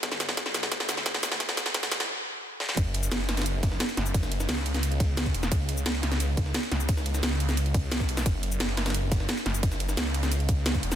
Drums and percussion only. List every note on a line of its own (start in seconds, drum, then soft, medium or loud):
0.03 kick loud
0.03 snare medium
0.03 closed hi-hat loud
0.12 snare medium
0.12 shaker soft
0.20 snare medium
0.20 closed hi-hat medium
0.20 shaker medium
0.29 snare medium
0.37 kick loud
0.37 snare loud
0.37 closed hi-hat loud
0.46 snare medium
0.54 snare loud
0.54 closed hi-hat medium
0.54 shaker medium
0.63 snare medium
0.63 closed hi-hat soft
0.72 kick loud
0.72 snare loud
0.72 closed hi-hat loud
0.80 snare medium
0.80 shaker soft
0.89 snare loud
0.89 closed hi-hat medium
0.89 shaker medium
0.97 snare medium
1.06 kick loud
1.06 snare loud
1.06 closed hi-hat loud
1.14 snare medium
1.23 snare loud
1.23 closed hi-hat medium
1.23 shaker medium
1.32 snare medium
1.40 kick loud
1.40 snare loud
1.40 closed hi-hat medium
1.49 snare medium
1.49 shaker soft
1.57 snare loud
1.57 closed hi-hat medium
1.57 shaker medium
1.66 snare medium
1.66 closed hi-hat soft
1.74 kick loud
1.74 snare loud
1.74 closed hi-hat loud
1.83 snare medium
1.83 closed hi-hat soft
1.83 shaker soft
1.92 snare loud
1.92 closed hi-hat medium
1.92 shaker medium
2.00 snare loud
2.00 closed hi-hat soft
2.60 snare medium
2.69 snare medium
2.77 kick loud
2.77 closed hi-hat loud
2.77 ride medium
2.77 shaker soft
2.94 closed hi-hat medium
2.94 ride medium
3.03 shaker medium
3.12 snare loud
3.12 closed hi-hat loud
3.12 ride medium
3.12 shaker medium
3.20 ride soft
3.29 snare loud
3.29 snare medium
3.29 closed hi-hat medium
3.29 ride medium
3.37 snare medium
3.37 snare soft
3.37 closed hi-hat soft
3.37 ride medium
3.37 shaker soft
3.42 snare medium
3.42 ride medium
3.46 closed hi-hat loud
3.46 ride medium
3.46 shaker soft
3.63 kick loud
3.63 snare soft
3.63 closed hi-hat medium
3.63 ride medium
3.63 shaker soft
3.72 snare soft
3.80 snare loud
3.80 closed hi-hat loud
3.80 ride medium
3.80 shaker soft
3.89 ride soft
3.89 shaker soft
3.97 snare medium
3.97 closed hi-hat medium
3.97 ride medium
4.06 shaker medium
4.14 kick loud
4.14 closed hi-hat medium
4.14 ride medium
4.14 shaker soft
4.23 snare medium
4.23 shaker soft
4.32 closed hi-hat medium
4.32 ride medium
4.40 snare medium
4.40 shaker medium
4.49 snare loud
4.49 closed hi-hat loud
4.49 open hi-hat medium
4.49 shaker medium
4.57 snare soft
4.66 closed hi-hat medium
4.66 ride medium
4.74 snare medium
4.74 snare soft
4.74 closed hi-hat soft
4.74 shaker soft
4.83 closed hi-hat medium
4.83 ride medium
4.83 shaker soft
4.92 closed hi-hat soft
5.00 kick loud
5.00 closed hi-hat medium
5.00 ride medium
5.00 shaker soft
5.17 snare loud
5.17 closed hi-hat medium
5.17 ride medium
5.17 shaker soft
5.26 kick medium
5.26 ride soft
5.26 shaker soft
5.34 closed hi-hat medium
5.34 ride medium
5.43 snare medium
5.43 shaker medium
5.52 kick loud
5.52 closed hi-hat medium
5.52 ride medium
5.52 shaker soft
5.69 closed hi-hat medium
5.69 ride medium
5.77 shaker medium
5.86 snare loud
5.86 closed hi-hat loud
5.86 ride medium
5.86 shaker soft
5.95 ride soft
6.03 snare soft
6.03 closed hi-hat medium
6.03 ride medium
6.12 snare soft
6.12 snare medium
6.12 closed hi-hat soft
6.12 shaker soft
6.20 closed hi-hat medium
6.20 ride medium
6.20 shaker soft
6.37 kick loud
6.37 snare soft
6.37 closed hi-hat medium
6.37 ride medium
6.37 shaker soft
6.46 snare soft
6.54 snare loud
6.54 closed hi-hat medium
6.54 ride medium
6.54 shaker soft
6.63 ride soft
6.63 shaker soft
6.72 snare medium
6.72 closed hi-hat medium
6.72 ride medium
6.80 shaker medium
6.89 kick loud
6.89 closed hi-hat medium
6.89 ride medium
6.89 shaker soft
6.97 snare medium
6.97 shaker soft
7.06 closed hi-hat medium
7.06 ride medium
7.14 snare medium
7.14 shaker medium
7.23 snare loud
7.23 closed hi-hat medium
7.23 open hi-hat medium
7.23 shaker medium
7.32 snare soft
7.40 closed hi-hat medium
7.40 ride medium
7.49 snare soft
7.49 snare medium
7.49 closed hi-hat soft
7.49 shaker soft
7.57 closed hi-hat medium
7.57 ride medium
7.57 shaker soft
7.66 closed hi-hat soft
7.74 kick loud
7.74 closed hi-hat medium
7.74 ride medium
7.74 shaker soft
7.92 snare loud
7.92 closed hi-hat medium
7.92 open hi-hat medium
7.92 shaker soft
8.00 kick medium
8.00 snare soft
8.00 shaker soft
8.09 closed hi-hat medium
8.09 ride medium
8.17 snare loud
8.17 snare soft
8.17 open hi-hat medium
8.17 shaker medium
8.26 kick loud
8.26 closed hi-hat medium
8.26 ride medium
8.26 shaker medium
8.43 closed hi-hat medium
8.43 ride medium
8.52 shaker medium
8.60 snare loud
8.60 closed hi-hat medium
8.60 ride medium
8.60 shaker medium
8.69 ride soft
8.77 snare loud
8.77 snare soft
8.77 closed hi-hat medium
8.77 ride medium
8.86 snare medium
8.86 snare soft
8.86 closed hi-hat soft
8.86 ride medium
8.86 shaker soft
8.90 snare medium
8.90 ride medium
8.94 closed hi-hat medium
8.94 ride medium
8.94 shaker soft
9.12 kick loud
9.12 snare soft
9.12 closed hi-hat medium
9.12 ride medium
9.12 shaker soft
9.20 snare soft
9.29 snare loud
9.29 closed hi-hat medium
9.29 ride medium
9.29 shaker soft
9.37 ride soft
9.37 shaker soft
9.46 snare medium
9.46 closed hi-hat medium
9.46 ride medium
9.54 shaker medium
9.63 kick loud
9.63 closed hi-hat medium
9.63 ride medium
9.63 shaker medium
9.72 snare medium
9.72 shaker soft
9.80 closed hi-hat medium
9.80 ride medium
9.89 snare medium
9.89 shaker medium
9.97 snare loud
9.97 closed hi-hat loud
9.97 open hi-hat medium
9.97 shaker medium
10.06 snare soft
10.14 closed hi-hat medium
10.14 ride medium
10.23 snare soft
10.23 snare medium
10.23 closed hi-hat soft
10.23 shaker soft
10.32 closed hi-hat medium
10.32 ride medium
10.32 shaker soft
10.40 closed hi-hat soft
10.49 kick loud
10.49 closed hi-hat medium
10.49 ride medium
10.49 shaker soft
10.66 snare loud
10.66 closed hi-hat medium
10.66 ride medium
10.66 shaker medium
10.74 kick medium
10.74 ride soft
10.74 shaker soft
10.83 closed hi-hat medium
10.83 ride medium
10.92 snare medium
10.92 snare soft
10.92 shaker medium